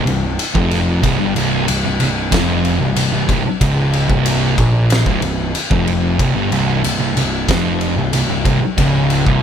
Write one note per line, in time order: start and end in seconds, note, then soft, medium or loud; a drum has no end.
0.06 0.37 C1 medium
0.06 0.32 C2 medium
0.06 ride medium
0.39 ride medium
0.55 1.00 F1 loud
0.55 1.02 F2 loud
0.55 kick loud
0.71 snare soft
0.71 ride medium
1.03 1.18 C1 medium
1.03 1.18 C2 loud
1.03 kick loud
1.03 ride medium
1.19 1.35 G1 medium
1.19 1.34 G2 loud
1.35 1.66 C1 medium
1.35 1.66 C2 loud
1.35 ride medium
1.67 1.83 C1 medium
1.67 1.83 C2 medium
1.67 ride loud
1.84 1.99 C1 medium
1.84 1.98 C2 medium
1.99 2.30 C1 medium
1.99 2.25 C2 medium
1.99 ride medium
2.32 2.77 F1 loud
2.32 2.80 F2 loud
2.32 kick loud
2.32 snare loud
2.32 ride loud
2.65 ride medium
2.80 2.95 C1 medium
2.80 2.96 C2 medium
2.96 3.11 C1 medium
2.96 3.11 C2 medium
2.96 ride loud
3.13 3.28 C1 medium
3.13 3.27 C2 medium
3.28 3.44 C1 medium
3.28 3.44 C2 loud
3.28 kick loud
3.28 ride medium
3.45 muted picked electric bass stroke soft
3.45 muted distorted electric guitar stroke medium
3.61 4.06 C#1 loud
3.61 4.09 C#2 loud
3.61 kick loud
3.61 ride loud
3.93 ride medium
4.09 4.54 C1 loud
4.09 4.57 C2 loud
4.09 kick loud
4.26 ride loud
4.58 5.03 A#1 loud
4.58 5.06 A#2 loud
4.58 kick loud
4.58 ride medium
4.90 snare loud
4.90 ride loud
5.06 5.21 C1 loud
5.06 5.21 C2 loud
5.06 kick loud
5.22 5.52 C1 medium
5.22 5.48 C2 medium
5.22 ride medium
5.55 ride medium
5.71 6.16 F1 medium
5.71 6.18 F2 loud
5.71 kick loud
5.87 ride medium
6.19 6.34 C1 medium
6.19 6.34 C2 loud
6.19 kick loud
6.19 ride medium
6.35 6.50 G1 loud
6.35 6.51 G2 loud
6.51 6.81 C1 loud
6.51 6.82 C2 loud
6.51 ride medium
6.84 6.99 C1 medium
6.84 6.99 C2 medium
6.84 ride loud
7.00 7.15 C1 medium
7.00 7.15 C2 medium
7.16 7.46 C1 medium
7.16 7.42 C2 medium
7.16 ride medium
7.48 7.94 F1 loud
7.48 7.96 F2 loud
7.48 kick loud
7.48 snare loud
7.48 ride loud
7.81 ride medium
7.96 8.12 C1 medium
7.96 8.13 C2 medium
8.13 8.28 C1 medium
8.13 8.29 C2 medium
8.13 ride loud
8.29 8.44 C1 medium
8.29 8.44 C2 medium
8.45 8.61 C1 loud
8.45 8.60 C2 loud
8.45 kick loud
8.45 ride medium
8.61 muted distorted electric guitar stroke medium
8.61 muted picked electric bass stroke soft
8.78 9.23 C#1 medium
8.78 9.25 C#2 loud
8.78 kick loud
8.78 ride loud
9.10 ride medium
9.26 9.43 C1 loud
9.26 9.43 C2 loud
9.26 kick loud